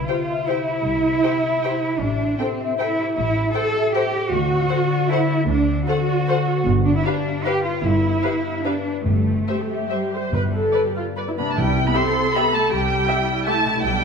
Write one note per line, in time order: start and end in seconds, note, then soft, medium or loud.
0.00 0.25 C3 medium
0.00 0.84 C3 soft
0.00 1.03 C4 soft
0.00 3.03 G5 soft
0.08 0.48 F4 medium
0.08 0.66 G4 soft
0.08 0.17 G4 soft
0.08 0.16 C5 soft
0.08 0.16 G5 soft
0.28 1.43 E5 soft
0.47 2.01 E4 medium
0.47 0.57 G4 soft
0.47 1.63 C5 soft
0.47 0.56 C5 soft
0.47 0.57 G5 soft
0.67 1.23 G4 soft
0.85 1.15 C2 medium
0.85 2.03 C3 medium
1.04 2.19 C4 soft
1.23 1.32 G4 soft
1.23 1.82 G4 soft
1.23 1.31 C5 soft
1.23 1.31 G5 soft
1.44 2.59 E5 soft
1.63 1.72 G4 soft
1.63 1.72 C5 soft
1.63 2.79 C5 soft
1.63 1.71 G5 soft
1.83 2.39 G4 soft
2.01 2.31 A1 medium
2.01 3.16 A2 medium
2.01 2.39 D4 medium
2.21 3.34 C4 soft
2.39 2.79 C4 medium
2.39 2.98 G4 soft
2.39 2.47 A4 soft
2.39 2.49 C5 soft
2.39 2.47 G5 soft
2.60 3.74 E5 soft
2.79 3.15 E4 medium
2.79 2.89 A4 medium
2.79 2.87 C5 soft
2.79 3.94 C5 soft
2.79 2.87 G5 soft
2.99 3.54 G4 soft
3.17 3.46 A1 medium
3.17 4.34 A2 medium
3.17 3.53 E4 medium
3.36 4.50 C4 soft
3.54 4.13 G4 soft
3.54 3.62 A4 soft
3.54 3.94 A4 medium
3.54 3.62 C5 medium
3.54 3.62 G5 soft
3.75 4.34 E5 medium
3.94 4.31 G4 medium
3.94 4.02 A4 soft
3.94 4.03 C5 soft
3.94 5.09 C5 soft
3.94 4.02 G5 medium
4.14 4.33 G4 soft
4.32 4.62 D2 medium
4.32 5.47 D3 medium
4.32 5.11 F#4 medium
4.51 5.67 C4 soft
4.69 5.28 A4 soft
4.69 4.78 A4 soft
4.69 4.78 C5 medium
4.69 4.77 F#5 soft
4.90 6.07 D5 medium
5.10 5.48 E4 medium
5.10 5.18 A4 soft
5.10 6.26 C5 medium
5.10 5.19 C5 soft
5.10 5.20 F#5 medium
5.29 5.87 A4 medium
5.48 5.79 D2 medium
5.48 6.67 D3 medium
5.48 5.87 D4 medium
5.68 6.68 C4 soft
5.87 6.64 F#4 medium
5.87 5.96 A4 medium
5.87 6.46 A4 medium
5.87 5.95 C5 soft
5.87 5.97 F#5 medium
6.08 9.07 D5 medium
6.28 6.37 A4 medium
6.28 6.36 C5 medium
6.28 6.67 C5 medium
6.28 6.37 F#5 medium
6.47 6.67 A4 soft
6.66 6.96 G1 medium
6.66 7.83 G2 medium
6.85 8.03 B3 soft
6.85 6.94 D4 medium
6.95 7.05 E4 medium
7.05 7.46 D4 medium
7.05 7.65 G4 medium
7.05 7.13 G4 medium
7.05 7.14 B4 soft
7.05 7.13 F5 soft
7.25 8.43 F5 soft
7.45 7.65 G4 medium
7.45 7.54 G4 soft
7.45 7.54 B4 soft
7.45 8.64 B4 soft
7.45 7.54 F5 medium
7.65 7.83 F4 medium
7.65 8.23 G4 soft
7.83 8.14 G1 medium
7.83 9.05 G2 medium
7.83 8.64 E4 medium
8.04 9.07 B3 soft
8.23 8.32 G4 soft
8.23 8.85 G4 soft
8.23 8.32 B4 soft
8.23 8.31 F5 soft
8.44 9.07 F5 soft
8.64 9.05 D4 medium
8.64 8.73 G4 soft
8.64 8.73 B4 soft
8.64 9.07 B4 soft
8.64 8.73 F5 soft
8.86 9.47 G4 soft
9.04 9.39 G1 medium
9.04 9.66 G2 medium
9.04 10.32 G2 medium
9.04 9.89 A3 medium
9.27 10.34 C4 soft
9.48 10.12 G4 soft
9.48 9.59 G4 medium
9.48 9.57 C5 soft
9.48 9.56 E5 soft
9.61 9.71 A4 soft
9.71 10.12 G4 medium
9.71 10.34 E5 soft
9.90 11.37 G3 medium
9.90 10.00 C5 soft
9.90 10.35 C5 soft
9.90 9.98 E5 soft
10.13 10.73 G4 soft
10.13 10.33 C5 medium
10.32 10.65 G1 medium
10.32 10.91 G2 medium
10.32 11.58 G2 soft
10.32 10.42 B4 medium
10.53 11.58 B3 soft
10.53 10.85 A4 medium
10.72 11.37 G4 soft
10.72 10.81 B4 soft
10.72 10.80 D5 soft
10.87 10.96 G4 soft
10.96 11.05 F4 soft
10.96 11.58 D5 soft
11.16 11.24 B4 soft
11.16 11.58 B4 soft
11.16 11.26 D5 soft
11.29 11.32 E4 soft
11.38 13.75 C3 medium
11.38 11.42 B3 soft
11.38 11.57 D4 medium
11.38 11.52 G4 soft
11.38 11.47 B5 medium
11.44 13.78 C4 soft
11.48 11.58 A3 soft
11.48 13.80 E4 soft
11.48 11.57 A5 soft
11.53 11.88 C2 medium
11.53 11.92 E4 medium
11.53 13.73 G4 soft
11.57 12.11 C3 medium
11.57 11.85 G3 medium
11.57 11.85 G5 medium
11.87 11.95 B3 soft
11.87 11.95 B5 medium
11.94 12.34 C4 medium
11.94 12.03 G4 soft
11.94 12.71 A4 medium
11.94 12.02 E5 soft
11.94 12.34 C6 medium
12.33 12.53 B3 medium
12.33 12.43 G4 soft
12.33 12.44 E5 soft
12.33 12.52 B5 medium
12.52 12.71 A3 medium
12.52 12.70 A5 medium
12.71 13.02 C2 medium
12.71 13.47 G3 medium
12.71 13.08 G4 medium
12.71 13.45 G5 medium
13.08 14.04 E4 medium
13.08 13.16 G4 soft
13.08 13.16 E5 soft
13.45 13.83 A3 medium
13.45 13.55 G4 soft
13.45 13.54 E5 soft
13.45 13.81 A5 medium
13.65 14.04 B2 medium
13.70 14.04 D4 soft
13.74 14.04 G4 soft
13.82 14.04 B1 medium
13.82 14.04 G3 medium
13.82 14.04 G5 medium